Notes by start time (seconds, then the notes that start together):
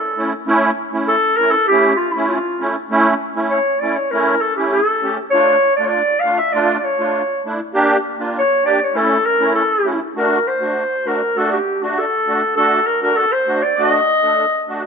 Already playing: A4
0.17 A3 C#4 E4
0.47 A3 C#4 E4
0.93 A3 C#4 E4
1.08 A4
1.37 A3 C#4 E4 A#4
1.51 A4
1.67 A3 C#4 E4 G4
1.97 F4
2.11 E4
2.16 A3 C#4 E4
2.29 F4
2.60 A3 C#4 E4
2.90 A3 C#4 E4
3.36 A3 C#4 E4
3.50 C#5
3.80 A3 C#4 E4 D5
3.96 C#5
4.11 A3 C#4 E4 A#4
4.41 A4
4.56 A3 C#4 E4 G4
4.72 A4
5.02 A3 C#4 G4
5.30 A3 D4 F4 C#5
5.76 A3 D4 F4 D5
5.85 C#5 D5
6.20 F5
6.24 A3 D4 F4
6.38 E5
6.52 A3 D4 F4 D5
6.78 D5
6.84 C#5
6.99 A3 D4 F4
7.45 A3 D4 E4
7.74 A#3 D4 G4
8.19 A#3 D4 F4
8.39 C#5
8.64 A#3 D4 G4 D5
8.84 C#5
8.94 A3 C#4 E4 A4
9.26 A#4
9.39 A3 C#4 E4
9.55 A4
9.85 A3 C#4 E4
10.16 A3 D4 F#4 A#4
10.47 C5
10.61 A3 D4 F#4
11.06 A3 D4 F#4 A#4
11.36 A3 D4 F#4 A4
11.51 G4
11.82 A3 D4 F#4
11.98 A4
12.28 A3 D4 F#4
12.56 A3 D4 F#4 A4
12.87 A#4
13.01 A3 D4 F#4 A#4
13.17 A4
13.32 C5
13.47 A3 D4 F#4
13.63 D5
13.77 A3 D4 F#4 D5
13.88 D#5
14.23 A3 D4 A4
14.68 A3 D4 F#4